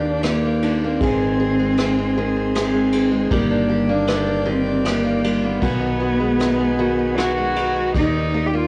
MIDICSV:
0, 0, Header, 1, 7, 480
1, 0, Start_track
1, 0, Key_signature, -3, "major"
1, 0, Tempo, 772201
1, 628, Time_signature, 3, 2, 24, 8
1, 5391, End_track
2, 0, Start_track
2, 0, Title_t, "Harmonium"
2, 0, Program_c, 0, 20
2, 0, Note_on_c, 0, 74, 62
2, 0, Note_on_c, 0, 79, 73
2, 617, Note_off_c, 0, 79, 0
2, 618, Note_off_c, 0, 74, 0
2, 640, Note_on_c, 0, 72, 61
2, 644, Note_on_c, 0, 80, 81
2, 2051, Note_off_c, 0, 72, 0
2, 2053, Note_off_c, 0, 80, 0
2, 2062, Note_on_c, 0, 79, 78
2, 2063, Note_on_c, 0, 74, 64
2, 3482, Note_off_c, 0, 79, 0
2, 3483, Note_off_c, 0, 74, 0
2, 3496, Note_on_c, 0, 80, 75
2, 3497, Note_on_c, 0, 71, 65
2, 4928, Note_off_c, 0, 80, 0
2, 4929, Note_off_c, 0, 71, 0
2, 4940, Note_on_c, 0, 79, 70
2, 4941, Note_on_c, 0, 74, 63
2, 5391, Note_off_c, 0, 74, 0
2, 5391, Note_off_c, 0, 79, 0
2, 5391, End_track
3, 0, Start_track
3, 0, Title_t, "Cello"
3, 0, Program_c, 1, 42
3, 0, Note_on_c, 1, 62, 74
3, 157, Note_on_c, 1, 58, 77
3, 167, Note_off_c, 1, 62, 0
3, 512, Note_on_c, 1, 60, 90
3, 521, Note_off_c, 1, 58, 0
3, 1576, Note_off_c, 1, 60, 0
3, 1580, Note_on_c, 1, 60, 85
3, 2033, Note_off_c, 1, 60, 0
3, 2058, Note_on_c, 1, 58, 87
3, 2422, Note_on_c, 1, 62, 92
3, 2432, Note_off_c, 1, 58, 0
3, 2791, Note_on_c, 1, 60, 82
3, 2800, Note_off_c, 1, 62, 0
3, 3035, Note_on_c, 1, 58, 86
3, 3045, Note_off_c, 1, 60, 0
3, 3379, Note_on_c, 1, 59, 91
3, 3389, Note_off_c, 1, 58, 0
3, 4456, Note_on_c, 1, 66, 92
3, 4465, Note_off_c, 1, 59, 0
3, 4941, Note_off_c, 1, 66, 0
3, 4948, Note_on_c, 1, 63, 96
3, 5260, Note_on_c, 1, 67, 66
3, 5270, Note_off_c, 1, 63, 0
3, 5315, Note_on_c, 1, 65, 92
3, 5325, Note_off_c, 1, 67, 0
3, 5391, Note_off_c, 1, 65, 0
3, 5391, End_track
4, 0, Start_track
4, 0, Title_t, "Steel-string acoustic guitar"
4, 0, Program_c, 2, 25
4, 0, Note_on_c, 2, 58, 72
4, 0, Note_on_c, 2, 67, 55
4, 32, Note_on_c, 2, 62, 51
4, 151, Note_off_c, 2, 67, 0
4, 159, Note_on_c, 2, 67, 59
4, 273, Note_off_c, 2, 58, 0
4, 280, Note_on_c, 2, 58, 52
4, 390, Note_off_c, 2, 62, 0
4, 397, Note_on_c, 2, 62, 53
4, 514, Note_off_c, 2, 58, 0
4, 523, Note_on_c, 2, 58, 51
4, 634, Note_off_c, 2, 67, 0
4, 639, Note_on_c, 2, 51, 70
4, 644, Note_on_c, 2, 68, 61
4, 681, Note_off_c, 2, 62, 0
4, 683, Note_off_c, 2, 58, 0
4, 758, Note_on_c, 2, 60, 52
4, 861, Note_off_c, 2, 68, 0
4, 869, Note_on_c, 2, 68, 64
4, 991, Note_on_c, 2, 56, 55
4, 1104, Note_off_c, 2, 60, 0
4, 1111, Note_on_c, 2, 60, 61
4, 1227, Note_off_c, 2, 56, 0
4, 1234, Note_on_c, 2, 56, 55
4, 1345, Note_off_c, 2, 51, 0
4, 1345, Note_off_c, 2, 68, 0
4, 1352, Note_on_c, 2, 51, 77
4, 1356, Note_on_c, 2, 68, 60
4, 1462, Note_off_c, 2, 60, 0
4, 1469, Note_on_c, 2, 60, 53
4, 1582, Note_off_c, 2, 68, 0
4, 1589, Note_on_c, 2, 68, 63
4, 1693, Note_off_c, 2, 56, 0
4, 1700, Note_on_c, 2, 56, 54
4, 1811, Note_off_c, 2, 60, 0
4, 1818, Note_on_c, 2, 60, 54
4, 1930, Note_off_c, 2, 56, 0
4, 1937, Note_on_c, 2, 56, 52
4, 2051, Note_off_c, 2, 51, 0
4, 2059, Note_on_c, 2, 51, 80
4, 2060, Note_off_c, 2, 68, 0
4, 2062, Note_on_c, 2, 67, 62
4, 2105, Note_off_c, 2, 56, 0
4, 2105, Note_off_c, 2, 60, 0
4, 2179, Note_on_c, 2, 62, 55
4, 2289, Note_off_c, 2, 67, 0
4, 2296, Note_on_c, 2, 67, 67
4, 2418, Note_on_c, 2, 58, 57
4, 2524, Note_off_c, 2, 62, 0
4, 2532, Note_on_c, 2, 62, 60
4, 2646, Note_off_c, 2, 58, 0
4, 2654, Note_on_c, 2, 58, 58
4, 2763, Note_off_c, 2, 51, 0
4, 2767, Note_off_c, 2, 67, 0
4, 2770, Note_on_c, 2, 51, 72
4, 2774, Note_on_c, 2, 67, 67
4, 2890, Note_off_c, 2, 62, 0
4, 2897, Note_on_c, 2, 62, 56
4, 3007, Note_off_c, 2, 67, 0
4, 3014, Note_on_c, 2, 67, 63
4, 3128, Note_off_c, 2, 58, 0
4, 3135, Note_on_c, 2, 58, 51
4, 3254, Note_off_c, 2, 62, 0
4, 3262, Note_on_c, 2, 62, 56
4, 3373, Note_off_c, 2, 58, 0
4, 3381, Note_on_c, 2, 58, 55
4, 3484, Note_off_c, 2, 51, 0
4, 3492, Note_off_c, 2, 67, 0
4, 3492, Note_on_c, 2, 51, 76
4, 3495, Note_on_c, 2, 66, 61
4, 3546, Note_off_c, 2, 58, 0
4, 3546, Note_off_c, 2, 62, 0
4, 3609, Note_on_c, 2, 63, 51
4, 3724, Note_off_c, 2, 66, 0
4, 3732, Note_on_c, 2, 66, 65
4, 3855, Note_on_c, 2, 56, 54
4, 3973, Note_off_c, 2, 63, 0
4, 3975, Note_on_c, 2, 63, 59
4, 4097, Note_off_c, 2, 56, 0
4, 4104, Note_on_c, 2, 56, 55
4, 4214, Note_off_c, 2, 51, 0
4, 4216, Note_off_c, 2, 66, 0
4, 4222, Note_on_c, 2, 51, 71
4, 4227, Note_on_c, 2, 66, 62
4, 4342, Note_off_c, 2, 63, 0
4, 4345, Note_on_c, 2, 63, 49
4, 4457, Note_off_c, 2, 66, 0
4, 4464, Note_on_c, 2, 66, 59
4, 4580, Note_off_c, 2, 56, 0
4, 4587, Note_on_c, 2, 56, 50
4, 4699, Note_off_c, 2, 63, 0
4, 4702, Note_on_c, 2, 63, 51
4, 4817, Note_off_c, 2, 56, 0
4, 4824, Note_on_c, 2, 56, 51
4, 4937, Note_off_c, 2, 51, 0
4, 4945, Note_off_c, 2, 66, 0
4, 4945, Note_on_c, 2, 51, 72
4, 4948, Note_on_c, 2, 67, 63
4, 4992, Note_off_c, 2, 56, 0
4, 5178, Note_off_c, 2, 67, 0
4, 5185, Note_on_c, 2, 67, 64
4, 5305, Note_on_c, 2, 58, 56
4, 5391, Note_off_c, 2, 51, 0
4, 5391, Note_off_c, 2, 58, 0
4, 5391, Note_off_c, 2, 63, 0
4, 5391, Note_off_c, 2, 67, 0
4, 5391, End_track
5, 0, Start_track
5, 0, Title_t, "Upright piano"
5, 0, Program_c, 3, 0
5, 0, Control_c, 3, 64, 127
5, 0, Note_on_c, 3, 51, 51
5, 134, Note_off_c, 3, 51, 0
5, 144, Note_on_c, 3, 51, 51
5, 378, Note_off_c, 3, 51, 0
5, 388, Note_on_c, 3, 51, 51
5, 621, Note_off_c, 3, 51, 0
5, 624, Note_on_c, 3, 56, 62
5, 636, Control_c, 3, 64, 0
5, 727, Control_c, 3, 64, 127
5, 861, Note_off_c, 3, 56, 0
5, 870, Note_on_c, 3, 56, 51
5, 1101, Note_off_c, 3, 56, 0
5, 1110, Note_on_c, 3, 56, 54
5, 1338, Note_off_c, 3, 56, 0
5, 1348, Note_on_c, 3, 56, 53
5, 1584, Note_off_c, 3, 56, 0
5, 1593, Note_on_c, 3, 56, 53
5, 1818, Note_off_c, 3, 56, 0
5, 1827, Note_on_c, 3, 56, 51
5, 2055, Note_off_c, 3, 56, 0
5, 2068, Control_c, 3, 64, 0
5, 2072, Note_on_c, 3, 55, 65
5, 2164, Control_c, 3, 64, 127
5, 2297, Note_off_c, 3, 55, 0
5, 2306, Note_on_c, 3, 55, 52
5, 2537, Note_off_c, 3, 55, 0
5, 2546, Note_on_c, 3, 55, 55
5, 2776, Note_off_c, 3, 55, 0
5, 2786, Note_on_c, 3, 55, 54
5, 3013, Note_off_c, 3, 55, 0
5, 3023, Note_on_c, 3, 55, 52
5, 3252, Note_off_c, 3, 55, 0
5, 3261, Note_on_c, 3, 55, 52
5, 3491, Note_off_c, 3, 55, 0
5, 3501, Note_on_c, 3, 59, 65
5, 3503, Control_c, 3, 64, 0
5, 3614, Control_c, 3, 64, 127
5, 3737, Note_on_c, 3, 66, 49
5, 3966, Note_off_c, 3, 59, 0
5, 3975, Note_on_c, 3, 59, 52
5, 4208, Note_off_c, 3, 66, 0
5, 4217, Note_on_c, 3, 66, 50
5, 4450, Note_off_c, 3, 59, 0
5, 4459, Note_on_c, 3, 59, 51
5, 4687, Note_off_c, 3, 66, 0
5, 4696, Note_on_c, 3, 66, 48
5, 4928, Note_off_c, 3, 59, 0
5, 4933, Note_off_c, 3, 66, 0
5, 4939, Note_on_c, 3, 51, 57
5, 4951, Control_c, 3, 64, 0
5, 5045, Control_c, 3, 64, 127
5, 5186, Note_on_c, 3, 58, 49
5, 5391, Note_off_c, 3, 51, 0
5, 5391, Note_off_c, 3, 58, 0
5, 5391, End_track
6, 0, Start_track
6, 0, Title_t, "Fingered electric bass"
6, 0, Program_c, 4, 33
6, 0, Note_on_c, 4, 39, 71
6, 605, Note_off_c, 4, 39, 0
6, 627, Note_on_c, 4, 32, 69
6, 2034, Note_off_c, 4, 32, 0
6, 2056, Note_on_c, 4, 31, 72
6, 3469, Note_off_c, 4, 31, 0
6, 3495, Note_on_c, 4, 35, 73
6, 4917, Note_off_c, 4, 35, 0
6, 4939, Note_on_c, 4, 39, 67
6, 5391, Note_off_c, 4, 39, 0
6, 5391, End_track
7, 0, Start_track
7, 0, Title_t, "Drums"
7, 141, Note_on_c, 9, 51, 49
7, 149, Note_on_c, 9, 37, 67
7, 203, Note_off_c, 9, 51, 0
7, 211, Note_off_c, 9, 37, 0
7, 387, Note_on_c, 9, 51, 45
7, 449, Note_off_c, 9, 51, 0
7, 624, Note_on_c, 9, 51, 45
7, 626, Note_on_c, 9, 36, 86
7, 686, Note_off_c, 9, 51, 0
7, 688, Note_off_c, 9, 36, 0
7, 1102, Note_on_c, 9, 51, 50
7, 1109, Note_on_c, 9, 37, 69
7, 1164, Note_off_c, 9, 51, 0
7, 1172, Note_off_c, 9, 37, 0
7, 1584, Note_on_c, 9, 51, 51
7, 1592, Note_on_c, 9, 37, 66
7, 1647, Note_off_c, 9, 51, 0
7, 1654, Note_off_c, 9, 37, 0
7, 1816, Note_on_c, 9, 51, 53
7, 1878, Note_off_c, 9, 51, 0
7, 2055, Note_on_c, 9, 51, 50
7, 2057, Note_on_c, 9, 36, 90
7, 2117, Note_off_c, 9, 51, 0
7, 2119, Note_off_c, 9, 36, 0
7, 2533, Note_on_c, 9, 51, 55
7, 2540, Note_on_c, 9, 37, 72
7, 2595, Note_off_c, 9, 51, 0
7, 2602, Note_off_c, 9, 37, 0
7, 3016, Note_on_c, 9, 51, 52
7, 3023, Note_on_c, 9, 37, 69
7, 3078, Note_off_c, 9, 51, 0
7, 3085, Note_off_c, 9, 37, 0
7, 3258, Note_on_c, 9, 51, 47
7, 3320, Note_off_c, 9, 51, 0
7, 3494, Note_on_c, 9, 36, 87
7, 3496, Note_on_c, 9, 51, 49
7, 3556, Note_off_c, 9, 36, 0
7, 3558, Note_off_c, 9, 51, 0
7, 3977, Note_on_c, 9, 51, 48
7, 3985, Note_on_c, 9, 37, 72
7, 4039, Note_off_c, 9, 51, 0
7, 4047, Note_off_c, 9, 37, 0
7, 4459, Note_on_c, 9, 51, 46
7, 4467, Note_on_c, 9, 37, 68
7, 4521, Note_off_c, 9, 51, 0
7, 4529, Note_off_c, 9, 37, 0
7, 4699, Note_on_c, 9, 51, 46
7, 4761, Note_off_c, 9, 51, 0
7, 4937, Note_on_c, 9, 51, 46
7, 4939, Note_on_c, 9, 36, 83
7, 4999, Note_off_c, 9, 51, 0
7, 5001, Note_off_c, 9, 36, 0
7, 5391, End_track
0, 0, End_of_file